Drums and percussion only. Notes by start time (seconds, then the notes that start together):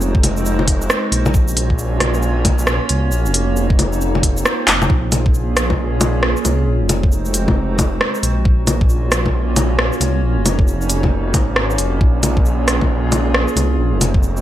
0.01 shaker
0.15 kick
0.23 open hi-hat, low bongo
0.37 shaker
0.46 shaker
0.59 low bongo
0.68 kick, open hi-hat
0.82 shaker
0.90 cross-stick, shaker
1.12 open hi-hat
1.26 low bongo, shaker
1.34 kick, shaker
1.48 shaker
1.57 open hi-hat
1.70 kick
1.79 shaker
2.00 cross-stick, open hi-hat, low bongo
2.14 shaker
2.22 shaker
2.45 kick, open hi-hat, low bongo
2.59 shaker
2.67 cross-stick, shaker
2.89 open hi-hat
3.12 shaker
3.26 shaker
3.34 open hi-hat
3.56 shaker
3.70 kick
3.79 open hi-hat, low bongo
3.93 shaker
4.01 shaker
4.15 low bongo
4.23 kick, open hi-hat
4.37 shaker
4.45 cross-stick, shaker
4.68 clap, open hi-hat
4.82 low bongo, shaker
4.90 kick
5.12 open hi-hat, low bongo, shaker
5.26 kick
5.34 shaker
5.57 cross-stick, open hi-hat, shaker
5.70 kick, low bongo
6.01 open hi-hat, low bongo, shaker
6.23 cross-stick
6.37 shaker
6.45 open hi-hat, low bongo, shaker
6.89 open hi-hat, low bongo, shaker
7.04 kick
7.12 shaker
7.25 shaker
7.34 open hi-hat, shaker
7.48 kick, low bongo
7.79 kick, open hi-hat, low bongo, shaker
8.01 cross-stick
8.15 shaker
8.23 open hi-hat, shaker
8.45 kick
8.67 open hi-hat, low bongo, shaker
8.81 kick
8.89 shaker
9.12 cross-stick, open hi-hat, shaker
9.26 kick, low bongo
9.56 open hi-hat, low bongo, shaker
9.79 cross-stick
9.93 shaker
10.01 open hi-hat, low bongo, shaker
10.46 open hi-hat, low bongo, shaker
10.59 kick
10.68 shaker
10.81 shaker
10.90 open hi-hat, shaker
11.03 kick, low bongo
11.34 kick, open hi-hat, low bongo, shaker
11.56 cross-stick
11.70 shaker
11.78 open hi-hat, shaker
12.01 kick
12.23 open hi-hat, low bongo, shaker
12.37 kick
12.46 shaker
12.68 cross-stick, open hi-hat, shaker
12.81 kick, low bongo
13.12 open hi-hat, low bongo, shaker
13.34 cross-stick
13.48 shaker
13.57 open hi-hat, low bongo, shaker
14.01 open hi-hat, low bongo, shaker
14.14 kick
14.23 shaker
14.37 shaker